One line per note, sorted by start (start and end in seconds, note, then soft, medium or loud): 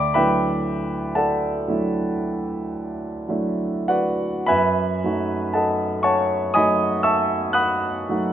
0.00 0.14 D2 soft
0.00 0.12 D5 medium
0.00 0.12 G5 medium
0.00 0.11 B5 medium
0.00 0.15 D6 medium
0.14 1.64 F#3 soft
0.14 1.65 A3 soft
0.14 1.65 D4 soft
0.14 1.65 E4 soft
0.14 1.13 B4 medium
0.14 1.13 E5 medium
0.14 1.13 G5 medium
0.14 1.16 B5 medium
1.15 3.24 A4 soft
1.15 3.25 D5 soft
1.15 3.24 F#5 medium
1.15 3.28 A5 medium
1.68 3.25 F#3 soft
1.68 3.25 A3 soft
1.68 3.25 D4 soft
1.68 3.25 E4 soft
3.29 4.45 F#3 soft
3.29 4.46 A3 soft
3.29 4.46 D4 soft
3.29 4.46 E4 soft
3.88 4.45 F#4 medium
3.88 4.45 B4 medium
3.88 4.45 D5 medium
3.88 4.48 F#5 medium
4.46 5.03 F#2 medium
4.46 5.51 B4 medium
4.46 5.51 E5 medium
4.46 5.51 G#5 medium
4.46 5.54 B5 medium
5.04 6.52 F#3 soft
5.04 6.52 A3 soft
5.04 6.52 D#4 soft
5.04 6.52 F#4 soft
5.54 6.02 A4 soft
5.54 6.02 D#5 soft
5.54 6.02 F#5 soft
5.54 6.03 A5 medium
6.03 6.51 C#5 medium
6.03 6.51 F#5 medium
6.03 6.51 A5 medium
6.03 6.54 C#6 medium
6.54 8.05 F#3 soft
6.54 8.06 A3 soft
6.54 8.06 D#4 soft
6.54 8.06 F#4 soft
6.54 7.02 D#5 medium
6.54 7.02 G#5 medium
6.54 7.02 B5 medium
6.54 7.05 D#6 medium
7.03 7.53 E5 medium
7.03 7.53 A5 medium
7.03 7.53 C#6 medium
7.03 7.56 E6 medium
7.53 8.33 F#5 medium
7.53 8.33 B5 medium
7.53 8.33 D#6 medium
7.53 8.33 F#6 medium
8.09 8.33 F#3 soft
8.09 8.33 A3 soft
8.09 8.33 D#4 soft
8.09 8.33 F#4 soft